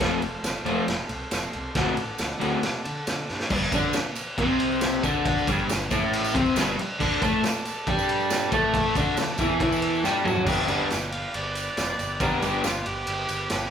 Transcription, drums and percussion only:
0.00 kick loud
0.00 snare loud
0.00 ride medium
0.22 ride medium
0.44 snare loud
0.44 ride medium
0.44 tambourine loud
0.66 ride medium
0.88 snare loud
0.88 ride medium
1.09 ride medium
1.31 snare loud
1.31 ride medium
1.31 tambourine medium
1.53 ride medium
1.75 kick loud
1.75 snare loud
1.75 ride medium
1.97 ride medium
2.18 snare medium
2.18 ride medium
2.18 tambourine loud
2.41 ride medium
2.63 snare loud
2.63 ride medium
2.85 ride medium
3.07 snare loud
3.07 ride loud
3.07 tambourine medium
3.29 snare medium
3.40 snare medium
3.50 kick loud
3.50 crash loud
3.50 tambourine soft
3.62 tambourine soft
3.72 kick loud
3.72 ride medium
3.72 tambourine medium
3.93 snare loud
3.93 ride medium
3.93 tambourine loud
4.15 ride medium
4.15 tambourine medium
4.38 kick loud
4.38 ride loud
4.60 ride medium
4.71 tambourine soft
4.81 snare loud
4.81 ride loud
4.81 tambourine loud
5.03 kick medium
5.03 ride medium
5.03 tambourine medium
5.25 kick loud
5.25 ride loud
5.25 tambourine soft
5.38 tambourine soft
5.47 kick loud
5.47 ride medium
5.47 tambourine medium
5.69 snare loud
5.69 ride loud
5.69 tambourine loud
5.91 kick loud
5.91 ride medium
5.91 tambourine medium
6.13 ride loud
6.25 tambourine medium
6.35 kick loud
6.35 ride medium
6.46 tambourine soft
6.56 snare loud
6.56 ride loud
6.56 tambourine loud
6.79 ride medium
7.00 kick loud
7.00 tambourine soft
7.00 crash loud
7.13 tambourine soft
7.22 kick loud
7.22 ride medium
7.22 tambourine medium
7.43 snare loud
7.43 ride loud
7.43 tambourine loud
7.65 ride medium
7.65 tambourine medium
7.87 kick loud
7.87 ride loud
7.99 tambourine medium
8.09 ride medium
8.20 tambourine soft
8.30 snare loud
8.30 ride loud
8.30 tambourine loud
8.52 kick loud
8.52 ride medium
8.52 tambourine medium
8.74 kick loud
8.74 ride loud
8.74 tambourine soft
8.95 kick loud
8.95 ride medium
8.95 tambourine medium
9.17 snare loud
9.17 ride loud
9.17 tambourine loud
9.38 kick loud
9.38 ride medium
9.38 tambourine medium
9.60 kick loud
9.60 ride loud
9.60 tambourine soft
9.72 tambourine medium
9.82 ride medium
9.95 tambourine soft
10.04 snare medium
10.04 tambourine medium
10.25 mid tom loud
10.25 tambourine medium
10.35 floor tom medium
10.46 kick loud
10.46 crash loud
10.46 tambourine medium
10.68 ride medium
10.68 tambourine medium
10.90 snare loud
10.90 ride medium
10.90 tambourine loud
11.12 ride medium
11.34 ride medium
11.55 ride medium
11.55 tambourine medium
11.77 snare loud
11.77 ride medium
11.77 tambourine loud
11.99 ride medium
11.99 tambourine medium
12.20 kick loud
12.20 ride loud
12.20 tambourine medium
12.42 ride medium
12.42 tambourine medium
12.64 snare medium
12.64 ride medium
12.64 tambourine loud
12.86 ride medium
13.07 ride loud
13.28 ride medium
13.28 tambourine medium
13.50 snare loud
13.50 ride loud
13.50 tambourine medium

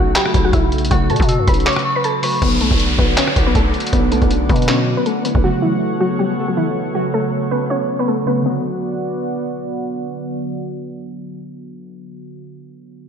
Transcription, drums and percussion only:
0.15 clap loud
0.15 closed hi-hat loud
0.26 cross-stick loud
0.34 kick loud
0.34 closed hi-hat medium
0.53 kick loud
0.53 closed hi-hat medium
0.72 closed hi-hat medium
0.78 closed hi-hat medium
0.85 closed hi-hat medium
0.91 kick loud
0.91 closed hi-hat medium
1.10 closed hi-hat medium
1.16 kick loud
1.16 closed hi-hat medium
1.22 closed hi-hat medium
1.29 closed hi-hat medium
1.48 kick loud
1.48 closed hi-hat medium
1.54 closed hi-hat medium
1.60 closed hi-hat medium
1.66 clap loud
1.66 closed hi-hat medium
1.73 cross-stick loud
1.73 closed hi-hat soft
1.79 closed hi-hat soft
2.04 closed hi-hat medium
2.23 open hi-hat loud
2.42 kick loud
2.42 closed hi-hat medium
2.42 crash medium
2.61 closed hi-hat medium
2.71 kick loud
2.80 closed hi-hat medium
2.99 kick loud
3.17 clap loud
3.17 closed hi-hat loud
3.27 cross-stick medium
3.36 kick loud
3.36 closed hi-hat medium
3.55 kick medium
3.55 closed hi-hat medium
3.74 closed hi-hat medium
3.80 closed hi-hat medium
3.87 closed hi-hat medium
3.93 kick loud
3.93 closed hi-hat medium
4.12 closed hi-hat medium
4.22 kick medium
4.22 closed hi-hat soft
4.31 closed hi-hat medium
4.49 kick loud
4.49 closed hi-hat medium
4.56 closed hi-hat medium
4.62 closed hi-hat medium
4.68 clap loud
4.68 closed hi-hat medium
5.06 closed hi-hat medium
5.25 closed hi-hat medium
5.35 kick loud

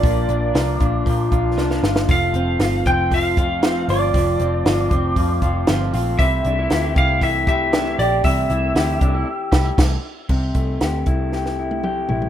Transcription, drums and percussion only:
0.03 kick loud
0.03 hi-hat pedal medium
0.03 open hi-hat medium
0.29 hi-hat pedal medium
0.29 open hi-hat medium
0.55 snare medium
0.55 hi-hat pedal medium
0.55 open hi-hat medium
0.80 kick loud
0.80 hi-hat pedal medium
0.80 open hi-hat medium
1.06 kick medium
1.06 hi-hat pedal medium
1.06 open hi-hat medium
1.32 kick medium
1.32 hi-hat pedal medium
1.32 open hi-hat medium
1.58 snare medium
1.71 snare medium
1.84 snare medium
1.96 snare medium
2.09 kick loud
2.09 hi-hat pedal medium
2.09 open hi-hat medium
2.34 hi-hat pedal medium
2.34 open hi-hat medium
2.60 snare medium
2.60 hi-hat pedal medium
2.60 open hi-hat medium
2.86 kick medium
2.86 hi-hat pedal medium
2.86 open hi-hat medium
3.11 kick medium
3.11 hi-hat pedal medium
3.11 open hi-hat medium
3.37 kick loud
3.37 hi-hat pedal medium
3.37 open hi-hat medium
3.63 snare loud
3.63 hi-hat pedal medium
3.63 open hi-hat medium
3.88 hi-hat pedal medium
3.88 open hi-hat medium
4.14 kick loud
4.14 hi-hat pedal medium
4.14 open hi-hat medium
4.39 hi-hat pedal medium
4.39 open hi-hat medium
4.66 snare loud
4.66 hi-hat pedal medium
4.66 open hi-hat medium
4.91 kick loud
4.91 hi-hat pedal medium
4.91 open hi-hat medium
5.16 kick medium
5.16 hi-hat pedal medium
5.16 open hi-hat medium
5.42 kick medium
5.42 hi-hat pedal medium
5.42 open hi-hat medium
5.67 snare loud
5.67 hi-hat pedal medium
5.67 open hi-hat loud
5.93 hi-hat pedal medium
5.93 open hi-hat medium
6.19 kick loud
6.19 hi-hat pedal medium
6.19 open hi-hat medium
6.45 hi-hat pedal medium
6.45 open hi-hat medium
6.70 snare medium
6.70 hi-hat pedal medium
6.70 open hi-hat medium
6.96 kick loud
6.96 hi-hat pedal medium
6.96 open hi-hat medium
7.21 kick medium
7.21 hi-hat pedal medium
7.21 open hi-hat medium
7.47 kick loud
7.47 hi-hat pedal medium
7.47 open hi-hat medium
7.73 snare loud
7.73 hi-hat pedal medium
7.73 open hi-hat medium
7.99 hi-hat pedal medium
7.99 open hi-hat medium
8.24 kick loud
8.24 hi-hat pedal medium
8.24 open hi-hat medium
8.50 hi-hat pedal medium
8.50 open hi-hat medium
8.76 snare medium
8.76 hi-hat pedal medium
8.76 open hi-hat medium
9.01 kick loud
9.01 hi-hat pedal medium
9.01 open hi-hat medium
9.52 kick loud
9.52 snare loud
9.52 crash medium
9.78 kick loud
9.78 snare loud
9.78 crash medium
10.29 kick loud
10.29 crash medium
10.55 kick medium
10.55 closed hi-hat medium
10.81 snare medium
10.81 closed hi-hat medium
11.06 kick loud
11.06 closed hi-hat medium
11.33 snare soft
11.46 snare soft
11.71 high tom medium
11.84 mid tom medium
12.09 floor tom medium
12.22 floor tom medium

